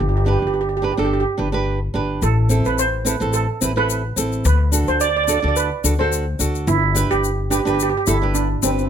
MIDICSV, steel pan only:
0, 0, Header, 1, 2, 480
1, 0, Start_track
1, 0, Time_signature, 4, 2, 24, 8
1, 0, Tempo, 557103
1, 7662, End_track
2, 0, Start_track
2, 0, Title_t, "Steel pan"
2, 0, Program_c, 0, 114
2, 1, Note_on_c, 0, 67, 74
2, 66, Note_off_c, 0, 67, 0
2, 77, Note_on_c, 0, 67, 67
2, 134, Note_off_c, 0, 67, 0
2, 144, Note_on_c, 0, 67, 71
2, 201, Note_off_c, 0, 67, 0
2, 215, Note_on_c, 0, 67, 71
2, 271, Note_off_c, 0, 67, 0
2, 282, Note_on_c, 0, 67, 70
2, 326, Note_off_c, 0, 67, 0
2, 336, Note_on_c, 0, 67, 62
2, 394, Note_off_c, 0, 67, 0
2, 404, Note_on_c, 0, 67, 77
2, 453, Note_off_c, 0, 67, 0
2, 463, Note_on_c, 0, 67, 66
2, 514, Note_off_c, 0, 67, 0
2, 524, Note_on_c, 0, 67, 74
2, 584, Note_off_c, 0, 67, 0
2, 595, Note_on_c, 0, 67, 63
2, 653, Note_off_c, 0, 67, 0
2, 662, Note_on_c, 0, 67, 84
2, 714, Note_off_c, 0, 67, 0
2, 724, Note_on_c, 0, 67, 52
2, 782, Note_off_c, 0, 67, 0
2, 793, Note_on_c, 0, 67, 66
2, 843, Note_off_c, 0, 67, 0
2, 854, Note_on_c, 0, 67, 70
2, 893, Note_off_c, 0, 67, 0
2, 903, Note_on_c, 0, 67, 86
2, 966, Note_off_c, 0, 67, 0
2, 977, Note_on_c, 0, 67, 72
2, 1025, Note_off_c, 0, 67, 0
2, 1035, Note_on_c, 0, 67, 90
2, 1100, Note_off_c, 0, 67, 0
2, 1923, Note_on_c, 0, 69, 104
2, 2262, Note_off_c, 0, 69, 0
2, 2293, Note_on_c, 0, 71, 97
2, 2393, Note_off_c, 0, 71, 0
2, 2405, Note_on_c, 0, 72, 108
2, 2511, Note_off_c, 0, 72, 0
2, 2641, Note_on_c, 0, 71, 81
2, 2874, Note_on_c, 0, 69, 100
2, 2886, Note_off_c, 0, 71, 0
2, 3250, Note_on_c, 0, 71, 102
2, 3255, Note_off_c, 0, 69, 0
2, 3575, Note_off_c, 0, 71, 0
2, 3845, Note_on_c, 0, 71, 97
2, 4207, Note_on_c, 0, 72, 106
2, 4220, Note_off_c, 0, 71, 0
2, 4315, Note_on_c, 0, 74, 111
2, 4321, Note_off_c, 0, 72, 0
2, 4380, Note_off_c, 0, 74, 0
2, 4391, Note_on_c, 0, 74, 83
2, 4440, Note_off_c, 0, 74, 0
2, 4450, Note_on_c, 0, 74, 101
2, 4501, Note_off_c, 0, 74, 0
2, 4512, Note_on_c, 0, 74, 82
2, 4576, Note_off_c, 0, 74, 0
2, 4588, Note_on_c, 0, 74, 84
2, 4642, Note_off_c, 0, 74, 0
2, 4652, Note_on_c, 0, 74, 80
2, 4713, Note_off_c, 0, 74, 0
2, 4723, Note_on_c, 0, 74, 85
2, 4777, Note_off_c, 0, 74, 0
2, 4794, Note_on_c, 0, 71, 103
2, 5162, Note_on_c, 0, 72, 99
2, 5175, Note_off_c, 0, 71, 0
2, 5490, Note_off_c, 0, 72, 0
2, 5757, Note_on_c, 0, 64, 113
2, 6124, Note_on_c, 0, 67, 118
2, 6136, Note_off_c, 0, 64, 0
2, 6461, Note_off_c, 0, 67, 0
2, 6471, Note_on_c, 0, 67, 104
2, 6532, Note_off_c, 0, 67, 0
2, 6543, Note_on_c, 0, 67, 75
2, 6602, Note_off_c, 0, 67, 0
2, 6613, Note_on_c, 0, 67, 95
2, 6662, Note_off_c, 0, 67, 0
2, 6672, Note_on_c, 0, 67, 82
2, 6730, Note_off_c, 0, 67, 0
2, 6742, Note_on_c, 0, 67, 96
2, 6793, Note_off_c, 0, 67, 0
2, 6804, Note_on_c, 0, 67, 89
2, 6860, Note_off_c, 0, 67, 0
2, 6870, Note_on_c, 0, 67, 87
2, 6925, Note_off_c, 0, 67, 0
2, 6957, Note_on_c, 0, 64, 97
2, 7180, Note_off_c, 0, 64, 0
2, 7192, Note_on_c, 0, 62, 89
2, 7301, Note_off_c, 0, 62, 0
2, 7433, Note_on_c, 0, 60, 97
2, 7495, Note_off_c, 0, 60, 0
2, 7505, Note_on_c, 0, 60, 63
2, 7558, Note_off_c, 0, 60, 0
2, 7568, Note_on_c, 0, 60, 67
2, 7616, Note_off_c, 0, 60, 0
2, 7626, Note_on_c, 0, 60, 60
2, 7662, Note_off_c, 0, 60, 0
2, 7662, End_track
0, 0, End_of_file